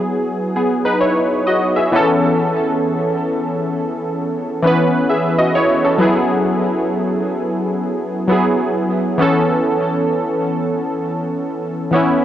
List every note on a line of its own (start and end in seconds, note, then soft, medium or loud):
0.00 1.95 F#3 medium
0.00 0.56 B3 medium
0.00 1.01 E4 medium
0.00 0.56 G#4 medium
0.56 0.84 B3 medium
0.56 0.84 G#4 medium
0.85 1.01 D#4 medium
0.85 1.01 B4 medium
1.00 1.45 E4 medium
1.00 1.44 C#5 medium
1.46 1.75 F#4 medium
1.46 1.74 D#5 medium
1.76 2.19 G#4 soft
1.76 2.19 E5 medium
1.92 3.40 E3 medium
1.92 3.40 B3 medium
1.92 3.41 C#4 medium
1.92 3.42 A4 medium
4.63 5.25 E3 medium
4.63 5.26 B3 medium
4.63 5.11 C#4 medium
4.67 5.12 B4 medium
5.09 5.38 G#4 medium
5.09 5.38 E5 medium
5.38 5.55 F#4 medium
5.38 5.55 D#5 medium
5.55 5.84 E4 medium
5.55 5.83 C#5 medium
5.85 6.28 C#4 soft
5.85 6.28 A4 medium
5.98 7.21 F#3 medium
5.98 7.22 B3 medium
5.98 7.22 E4 medium
6.03 7.23 G#4 medium
8.28 8.89 F#3 medium
8.28 8.90 B3 medium
8.28 8.91 E4 medium
8.32 8.91 G#4 medium
9.18 10.67 E3 medium
9.18 10.68 B3 medium
9.18 10.68 C#4 medium
9.22 10.69 A4 medium
11.91 12.25 E3 medium
11.91 12.25 B3 medium
11.91 12.25 C#4 medium
11.95 12.25 E4 medium